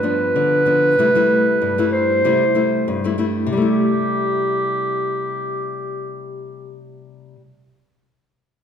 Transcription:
Already playing: nylon-string guitar G2, clarinet B4
0.03 nylon-string guitar F3 B3 D4
0.36 nylon-string guitar D3
0.66 nylon-string guitar F3 B3 D4
0.99 nylon-string guitar C3 G3 A3 E4
1.15 nylon-string guitar G3 A3 E4
1.62 nylon-string guitar G2
1.78 nylon-string guitar G3 A3 E4
1.92 clarinet C5
2.25 nylon-string guitar C3 G3 A3 E4
2.55 nylon-string guitar G3 A3 E4
2.88 nylon-string guitar G2
3.04 nylon-string guitar G3 A3 E4
3.18 nylon-string guitar G3 A3 E4
3.47 nylon-string guitar C3
3.51 nylon-string guitar G3, clarinet G4
3.57 nylon-string guitar A3
3.62 nylon-string guitar E4

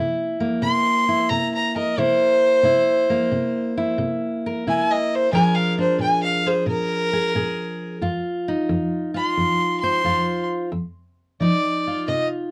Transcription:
Already playing: steel-string acoustic guitar C3 A#3 E4
0.40 steel-string acoustic guitar A#3
0.62 steel-string acoustic guitar C3, fiddle C6
1.09 steel-string acoustic guitar E4
1.30 steel-string acoustic guitar C3, fiddle A#5
1.55 fiddle A#5
1.76 steel-string acoustic guitar A#4, fiddle D#5
1.98 steel-string acoustic guitar C3 E4, fiddle C5
2.63 steel-string acoustic guitar C3 E4
3.10 steel-string acoustic guitar A#3
3.32 steel-string acoustic guitar C3
3.78 steel-string acoustic guitar E4
3.98 steel-string acoustic guitar C3
4.46 steel-string acoustic guitar A#4
4.67 steel-string acoustic guitar C3 E4, fiddle G#5
4.91 fiddle D#5
5.15 fiddle C5
5.32 steel-string acoustic guitar A#2 F3 D4 G#4 A#4, fiddle G#5
5.55 fiddle F5
5.79 steel-string acoustic guitar D4, fiddle C5
5.98 steel-string acoustic guitar A#2, fiddle G#5
6.23 fiddle F5
6.46 steel-string acoustic guitar G#4, fiddle C5
6.66 steel-string acoustic guitar A#2, fiddle A#4
7.13 steel-string acoustic guitar G#4
7.35 steel-string acoustic guitar A#2 G#4
8.02 steel-string acoustic guitar F2 F4
8.48 steel-string acoustic guitar D#4
8.69 steel-string acoustic guitar F2
9.14 steel-string acoustic guitar F4, fiddle C6
9.37 steel-string acoustic guitar F2
9.80 steel-string acoustic guitar C5, fiddle C6
10.04 steel-string acoustic guitar F2 F4
10.72 steel-string acoustic guitar F2
11.40 steel-string acoustic guitar F3 D#4, fiddle D5
11.87 steel-string acoustic guitar F4
12.08 steel-string acoustic guitar C3, fiddle D#5

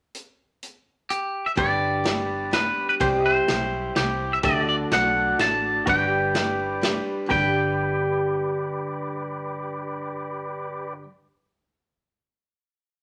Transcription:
0.14 closed hi-hat
0.63 closed hi-hat
1.10 clean electric guitar G4, closed hi-hat
1.46 clean electric guitar E5
1.55 fingered electric bass G1, steel-string acoustic guitar G2 D3 G3 B3 D4 G4, pedal steel guitar G4 B4, clean electric guitar D5, kick, ride
1.60 pedal steel guitar D5
2.04 steel-string acoustic guitar G3 B3 D4 G4, snare, ride
2.51 steel-string acoustic guitar G3 B3 D4 G4, clean electric guitar B4, snare, ride
2.89 clean electric guitar B4
3.00 fingered electric bass C2, steel-string acoustic guitar C3 G3 C4 E4 G4, pedal steel guitar G4 C5 D5, clean electric guitar C5, kick, ride
3.26 clean electric guitar C5, pedal steel guitar E5
3.48 fingered electric bass B1, steel-string acoustic guitar G3 C4 E4 G4, snare, ride
3.96 fingered electric bass C2, steel-string acoustic guitar G3 C4 E4 G4, clean electric guitar G4, snare, ride
4.33 clean electric guitar E5
4.43 fingered electric bass D2, steel-string acoustic guitar D3 A3 D4 F#4 A4, tonewheel organ F#4 A4 D5, pedal steel guitar G4 A4 E5, clean electric guitar D5, kick, ride
4.63 pedal steel guitar F#4
4.69 clean electric guitar D5, pedal steel guitar D5
4.91 fingered electric bass B1, steel-string acoustic guitar A3 D4 F#4 A4, clean electric guitar F#5, snare, ride
5.39 fingered electric bass A1, steel-string acoustic guitar A3 D4 F#4 A4, clean electric guitar A5, snare, ride
5.86 fingered electric bass G1, steel-string acoustic guitar G2 D3 G3 D4 G4 B4, pedal steel guitar F#4 B4 D5, tonewheel organ G4 B4 D5, clean electric guitar G5, kick, ride
6.06 pedal steel guitar G4
6.34 steel-string acoustic guitar G3 D4 G4 B4, snare, ride
6.81 steel-string acoustic guitar G3 D4 G4 B4, snare, ride
7.26 steel-string acoustic guitar G2 D3, pedal steel guitar G4 B4
7.31 fingered electric bass G1, steel-string acoustic guitar G3 D4, tonewheel organ G4 B4 D5, pedal steel guitar D5, clean electric guitar G5, kick
7.36 steel-string acoustic guitar G4 B4

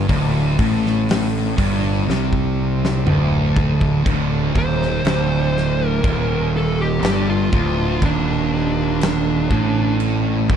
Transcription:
0.08 fingered electric bass D1, distorted electric guitar D2, kick, open hi-hat
0.58 fingered electric bass A1, distorted electric guitar A2, kick, open hi-hat
0.86 snare
1.09 snare, open hi-hat
1.58 fingered electric bass G1, distorted electric guitar G2, kick, open hi-hat
2.08 fingered electric bass C2, distorted electric guitar C3, snare
2.33 kick
2.85 snare
3.07 fingered electric bass D1, distorted electric guitar D2, mid tom
3.56 kick
3.81 kick
4.06 fingered electric bass D1, distorted electric guitar D2, kick, crash
4.55 fingered electric bass D#1, distorted electric guitar D#2, lead electric guitar C5, kick
4.82 snare
5.05 fingered electric bass D1, distorted electric guitar D2, snare, crash
5.57 snare
5.86 lead electric guitar A#4
6.04 fingered electric bass D#1, distorted electric guitar D#2, kick, crash
6.57 lead electric guitar A4
6.81 lead electric guitar G4
7.02 fingered electric bass G1, distorted electric guitar G2, snare, crash
7.30 lead electric guitar F4
7.52 fingered electric bass D1, distorted electric guitar D2, kick
8.02 fingered electric bass D#1, distorted electric guitar D#2, lead electric guitar D4, kick, crash
9.01 snare, crash
9.50 fingered electric bass A1, distorted electric guitar A2, kick
10.00 crash
10.50 fingered electric bass D1, distorted electric guitar D2, kick

